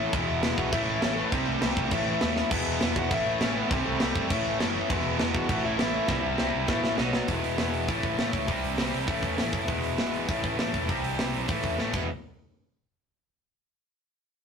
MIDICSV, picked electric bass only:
0, 0, Header, 1, 2, 480
1, 0, Start_track
1, 0, Tempo, 297915
1, 205, Time_signature, 4, 2, 24, 8
1, 12204, Tempo, 300752
1, 23166, End_track
2, 0, Start_track
2, 0, Title_t, "Picked electric bass"
2, 0, Program_c, 0, 34
2, 219, Note_on_c, 0, 28, 110
2, 362, Note_off_c, 0, 28, 0
2, 471, Note_on_c, 0, 28, 85
2, 610, Note_off_c, 0, 28, 0
2, 686, Note_on_c, 0, 28, 92
2, 833, Note_off_c, 0, 28, 0
2, 944, Note_on_c, 0, 35, 106
2, 1085, Note_off_c, 0, 35, 0
2, 1169, Note_on_c, 0, 33, 108
2, 1315, Note_off_c, 0, 33, 0
2, 1397, Note_on_c, 0, 33, 98
2, 1546, Note_off_c, 0, 33, 0
2, 1638, Note_on_c, 0, 33, 99
2, 1934, Note_off_c, 0, 33, 0
2, 2133, Note_on_c, 0, 36, 110
2, 2277, Note_off_c, 0, 36, 0
2, 2353, Note_on_c, 0, 36, 93
2, 2503, Note_off_c, 0, 36, 0
2, 2602, Note_on_c, 0, 36, 100
2, 2749, Note_off_c, 0, 36, 0
2, 2856, Note_on_c, 0, 36, 89
2, 2999, Note_off_c, 0, 36, 0
2, 3089, Note_on_c, 0, 33, 110
2, 3234, Note_off_c, 0, 33, 0
2, 3332, Note_on_c, 0, 33, 93
2, 3476, Note_off_c, 0, 33, 0
2, 3588, Note_on_c, 0, 39, 98
2, 3874, Note_off_c, 0, 39, 0
2, 4055, Note_on_c, 0, 28, 106
2, 4198, Note_off_c, 0, 28, 0
2, 4300, Note_on_c, 0, 28, 87
2, 4442, Note_off_c, 0, 28, 0
2, 4549, Note_on_c, 0, 28, 94
2, 4687, Note_off_c, 0, 28, 0
2, 4779, Note_on_c, 0, 28, 89
2, 4920, Note_off_c, 0, 28, 0
2, 5012, Note_on_c, 0, 33, 104
2, 5156, Note_off_c, 0, 33, 0
2, 5255, Note_on_c, 0, 33, 96
2, 5398, Note_off_c, 0, 33, 0
2, 5486, Note_on_c, 0, 33, 93
2, 5779, Note_off_c, 0, 33, 0
2, 5974, Note_on_c, 0, 36, 101
2, 6117, Note_off_c, 0, 36, 0
2, 6218, Note_on_c, 0, 36, 96
2, 6360, Note_off_c, 0, 36, 0
2, 6463, Note_on_c, 0, 36, 99
2, 6603, Note_off_c, 0, 36, 0
2, 6697, Note_on_c, 0, 31, 101
2, 6839, Note_off_c, 0, 31, 0
2, 6934, Note_on_c, 0, 33, 116
2, 7077, Note_off_c, 0, 33, 0
2, 7192, Note_on_c, 0, 33, 100
2, 7329, Note_off_c, 0, 33, 0
2, 7442, Note_on_c, 0, 30, 103
2, 7724, Note_off_c, 0, 30, 0
2, 7900, Note_on_c, 0, 28, 98
2, 8041, Note_off_c, 0, 28, 0
2, 8158, Note_on_c, 0, 28, 93
2, 8293, Note_off_c, 0, 28, 0
2, 8397, Note_on_c, 0, 28, 96
2, 8533, Note_off_c, 0, 28, 0
2, 8620, Note_on_c, 0, 32, 92
2, 8761, Note_off_c, 0, 32, 0
2, 8851, Note_on_c, 0, 33, 102
2, 8995, Note_off_c, 0, 33, 0
2, 9106, Note_on_c, 0, 33, 100
2, 9245, Note_off_c, 0, 33, 0
2, 9328, Note_on_c, 0, 33, 99
2, 9621, Note_off_c, 0, 33, 0
2, 9812, Note_on_c, 0, 36, 105
2, 9956, Note_off_c, 0, 36, 0
2, 10047, Note_on_c, 0, 36, 83
2, 10192, Note_off_c, 0, 36, 0
2, 10307, Note_on_c, 0, 36, 88
2, 10446, Note_off_c, 0, 36, 0
2, 10534, Note_on_c, 0, 36, 87
2, 10678, Note_off_c, 0, 36, 0
2, 10772, Note_on_c, 0, 33, 105
2, 10916, Note_off_c, 0, 33, 0
2, 11011, Note_on_c, 0, 33, 93
2, 11156, Note_off_c, 0, 33, 0
2, 11246, Note_on_c, 0, 35, 103
2, 11541, Note_off_c, 0, 35, 0
2, 11734, Note_on_c, 0, 28, 86
2, 11960, Note_off_c, 0, 28, 0
2, 11975, Note_on_c, 0, 28, 89
2, 12201, Note_off_c, 0, 28, 0
2, 12210, Note_on_c, 0, 28, 84
2, 12667, Note_off_c, 0, 28, 0
2, 12700, Note_on_c, 0, 33, 108
2, 12922, Note_off_c, 0, 33, 0
2, 12937, Note_on_c, 0, 33, 84
2, 13160, Note_off_c, 0, 33, 0
2, 13174, Note_on_c, 0, 33, 95
2, 13398, Note_off_c, 0, 33, 0
2, 13417, Note_on_c, 0, 37, 78
2, 13639, Note_off_c, 0, 37, 0
2, 13665, Note_on_c, 0, 36, 90
2, 13883, Note_off_c, 0, 36, 0
2, 13905, Note_on_c, 0, 36, 88
2, 14123, Note_off_c, 0, 36, 0
2, 14146, Note_on_c, 0, 36, 85
2, 14364, Note_off_c, 0, 36, 0
2, 14373, Note_on_c, 0, 36, 92
2, 14597, Note_off_c, 0, 36, 0
2, 14610, Note_on_c, 0, 33, 98
2, 14835, Note_off_c, 0, 33, 0
2, 14848, Note_on_c, 0, 40, 96
2, 15074, Note_off_c, 0, 40, 0
2, 15092, Note_on_c, 0, 33, 90
2, 15313, Note_off_c, 0, 33, 0
2, 15323, Note_on_c, 0, 30, 90
2, 15551, Note_off_c, 0, 30, 0
2, 15571, Note_on_c, 0, 28, 96
2, 15796, Note_off_c, 0, 28, 0
2, 15805, Note_on_c, 0, 28, 83
2, 16033, Note_off_c, 0, 28, 0
2, 16045, Note_on_c, 0, 32, 96
2, 16503, Note_off_c, 0, 32, 0
2, 16541, Note_on_c, 0, 33, 90
2, 16761, Note_off_c, 0, 33, 0
2, 16783, Note_on_c, 0, 33, 90
2, 17002, Note_off_c, 0, 33, 0
2, 17017, Note_on_c, 0, 33, 89
2, 17240, Note_off_c, 0, 33, 0
2, 17264, Note_on_c, 0, 28, 85
2, 17483, Note_off_c, 0, 28, 0
2, 17506, Note_on_c, 0, 36, 95
2, 17719, Note_off_c, 0, 36, 0
2, 17728, Note_on_c, 0, 36, 82
2, 17951, Note_off_c, 0, 36, 0
2, 17960, Note_on_c, 0, 36, 85
2, 18191, Note_off_c, 0, 36, 0
2, 18206, Note_on_c, 0, 35, 93
2, 18434, Note_off_c, 0, 35, 0
2, 18451, Note_on_c, 0, 33, 96
2, 18677, Note_off_c, 0, 33, 0
2, 18694, Note_on_c, 0, 40, 81
2, 18919, Note_off_c, 0, 40, 0
2, 18940, Note_on_c, 0, 33, 88
2, 19162, Note_off_c, 0, 33, 0
2, 19173, Note_on_c, 0, 28, 84
2, 19391, Note_off_c, 0, 28, 0
2, 23166, End_track
0, 0, End_of_file